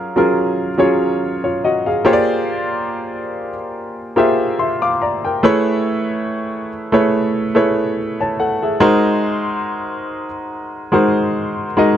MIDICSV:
0, 0, Header, 1, 2, 480
1, 0, Start_track
1, 0, Tempo, 845070
1, 1164, Time_signature, 4, 2, 24, 8
1, 6799, End_track
2, 0, Start_track
2, 0, Title_t, "Grand piano"
2, 0, Program_c, 0, 0
2, 0, Control_c, 0, 64, 127
2, 0, Note_on_c, 0, 54, 104
2, 0, Note_on_c, 0, 61, 96
2, 0, Note_on_c, 0, 65, 91
2, 0, Note_on_c, 0, 68, 97
2, 0, Note_on_c, 0, 70, 114
2, 90, Note_off_c, 0, 54, 0
2, 90, Note_on_c, 0, 54, 76
2, 92, Note_off_c, 0, 61, 0
2, 92, Note_on_c, 0, 61, 68
2, 96, Note_off_c, 0, 65, 0
2, 96, Note_on_c, 0, 65, 70
2, 99, Note_off_c, 0, 68, 0
2, 99, Note_off_c, 0, 70, 0
2, 99, Note_on_c, 0, 68, 75
2, 99, Note_on_c, 0, 70, 84
2, 392, Note_off_c, 0, 54, 0
2, 393, Note_off_c, 0, 61, 0
2, 394, Note_off_c, 0, 65, 0
2, 396, Note_off_c, 0, 68, 0
2, 396, Note_off_c, 0, 70, 0
2, 441, Note_on_c, 0, 54, 77
2, 445, Note_on_c, 0, 61, 79
2, 449, Note_on_c, 0, 65, 69
2, 450, Note_on_c, 0, 68, 75
2, 452, Note_on_c, 0, 73, 85
2, 686, Note_off_c, 0, 65, 0
2, 687, Note_off_c, 0, 68, 0
2, 688, Note_off_c, 0, 73, 0
2, 818, Note_on_c, 0, 73, 57
2, 822, Note_on_c, 0, 65, 50
2, 921, Note_off_c, 0, 73, 0
2, 923, Note_off_c, 0, 65, 0
2, 934, Note_on_c, 0, 75, 67
2, 937, Note_on_c, 0, 66, 59
2, 1052, Note_off_c, 0, 75, 0
2, 1054, Note_off_c, 0, 66, 0
2, 1059, Note_on_c, 0, 77, 59
2, 1061, Note_off_c, 0, 54, 0
2, 1063, Note_off_c, 0, 61, 0
2, 1063, Note_on_c, 0, 68, 53
2, 1160, Note_off_c, 0, 68, 0
2, 1162, Note_on_c, 0, 58, 97
2, 1164, Note_on_c, 0, 65, 91
2, 1167, Note_on_c, 0, 67, 95
2, 1168, Note_on_c, 0, 68, 94
2, 1170, Note_on_c, 0, 72, 94
2, 1171, Control_c, 0, 64, 0
2, 1173, Note_on_c, 0, 73, 91
2, 1208, Note_off_c, 0, 73, 0
2, 1210, Note_on_c, 0, 74, 114
2, 1254, Control_c, 0, 64, 127
2, 1284, Note_off_c, 0, 77, 0
2, 1984, Note_off_c, 0, 58, 0
2, 1985, Note_off_c, 0, 65, 0
2, 1986, Note_off_c, 0, 67, 0
2, 1987, Note_off_c, 0, 68, 0
2, 1988, Note_off_c, 0, 72, 0
2, 2007, Note_off_c, 0, 74, 0
2, 2363, Note_on_c, 0, 58, 74
2, 2365, Note_on_c, 0, 65, 68
2, 2367, Note_on_c, 0, 67, 73
2, 2369, Note_on_c, 0, 68, 70
2, 2371, Note_on_c, 0, 72, 72
2, 2373, Note_on_c, 0, 76, 84
2, 2604, Note_off_c, 0, 76, 0
2, 2607, Note_off_c, 0, 72, 0
2, 2609, Note_on_c, 0, 84, 66
2, 2612, Note_on_c, 0, 76, 57
2, 2729, Note_off_c, 0, 84, 0
2, 2731, Note_off_c, 0, 76, 0
2, 2737, Note_on_c, 0, 86, 68
2, 2740, Note_on_c, 0, 77, 56
2, 2776, Note_off_c, 0, 58, 0
2, 2777, Note_off_c, 0, 65, 0
2, 2778, Note_off_c, 0, 67, 0
2, 2779, Note_off_c, 0, 68, 0
2, 2841, Note_off_c, 0, 86, 0
2, 2842, Note_off_c, 0, 77, 0
2, 2849, Note_on_c, 0, 82, 62
2, 2854, Note_on_c, 0, 74, 57
2, 2970, Note_off_c, 0, 82, 0
2, 2972, Note_off_c, 0, 74, 0
2, 2979, Note_on_c, 0, 79, 59
2, 2983, Note_on_c, 0, 70, 51
2, 3084, Note_on_c, 0, 57, 92
2, 3088, Note_on_c, 0, 64, 95
2, 3088, Note_on_c, 0, 68, 88
2, 3091, Control_c, 0, 64, 0
2, 3091, Note_on_c, 0, 71, 91
2, 3095, Note_on_c, 0, 73, 110
2, 3188, Control_c, 0, 64, 127
2, 3204, Note_off_c, 0, 79, 0
2, 3206, Note_off_c, 0, 70, 0
2, 3796, Note_off_c, 0, 57, 0
2, 3798, Note_off_c, 0, 64, 0
2, 3798, Note_off_c, 0, 68, 0
2, 3800, Note_off_c, 0, 71, 0
2, 3802, Note_off_c, 0, 73, 0
2, 3932, Note_on_c, 0, 57, 83
2, 3934, Note_on_c, 0, 64, 66
2, 3936, Note_on_c, 0, 68, 73
2, 3940, Note_on_c, 0, 71, 73
2, 3941, Note_on_c, 0, 73, 89
2, 4232, Note_off_c, 0, 57, 0
2, 4233, Note_off_c, 0, 64, 0
2, 4235, Note_off_c, 0, 68, 0
2, 4237, Note_off_c, 0, 71, 0
2, 4237, Note_off_c, 0, 73, 0
2, 4287, Note_on_c, 0, 57, 80
2, 4289, Note_on_c, 0, 64, 70
2, 4292, Note_on_c, 0, 68, 67
2, 4294, Note_on_c, 0, 71, 74
2, 4296, Note_on_c, 0, 73, 87
2, 4528, Note_off_c, 0, 68, 0
2, 4529, Note_off_c, 0, 71, 0
2, 4530, Note_off_c, 0, 73, 0
2, 4661, Note_on_c, 0, 81, 59
2, 4664, Note_on_c, 0, 73, 49
2, 4762, Note_off_c, 0, 81, 0
2, 4764, Note_off_c, 0, 73, 0
2, 4769, Note_on_c, 0, 78, 65
2, 4771, Note_on_c, 0, 69, 57
2, 4889, Note_off_c, 0, 78, 0
2, 4891, Note_off_c, 0, 69, 0
2, 4898, Note_on_c, 0, 76, 57
2, 4901, Note_on_c, 0, 68, 50
2, 4904, Note_off_c, 0, 57, 0
2, 4905, Note_off_c, 0, 64, 0
2, 5000, Note_on_c, 0, 56, 110
2, 5001, Note_on_c, 0, 63, 101
2, 5004, Note_on_c, 0, 66, 88
2, 5007, Note_on_c, 0, 70, 99
2, 5010, Control_c, 0, 64, 0
2, 5010, Note_on_c, 0, 72, 104
2, 5119, Control_c, 0, 64, 127
2, 5124, Note_off_c, 0, 76, 0
2, 5125, Note_off_c, 0, 68, 0
2, 5823, Note_off_c, 0, 56, 0
2, 5823, Note_off_c, 0, 63, 0
2, 5824, Note_off_c, 0, 66, 0
2, 5826, Note_off_c, 0, 70, 0
2, 5827, Note_off_c, 0, 72, 0
2, 6201, Note_on_c, 0, 56, 78
2, 6205, Note_on_c, 0, 63, 74
2, 6206, Note_on_c, 0, 66, 71
2, 6208, Note_on_c, 0, 70, 79
2, 6212, Note_on_c, 0, 72, 83
2, 6615, Note_off_c, 0, 56, 0
2, 6617, Note_off_c, 0, 63, 0
2, 6617, Note_off_c, 0, 66, 0
2, 6618, Note_off_c, 0, 70, 0
2, 6620, Note_off_c, 0, 72, 0
2, 6684, Note_on_c, 0, 56, 78
2, 6686, Note_on_c, 0, 63, 74
2, 6688, Note_on_c, 0, 66, 70
2, 6690, Note_on_c, 0, 70, 73
2, 6694, Note_on_c, 0, 75, 85
2, 6799, Note_off_c, 0, 56, 0
2, 6799, Note_off_c, 0, 63, 0
2, 6799, Note_off_c, 0, 66, 0
2, 6799, Note_off_c, 0, 70, 0
2, 6799, Note_off_c, 0, 75, 0
2, 6799, End_track
0, 0, End_of_file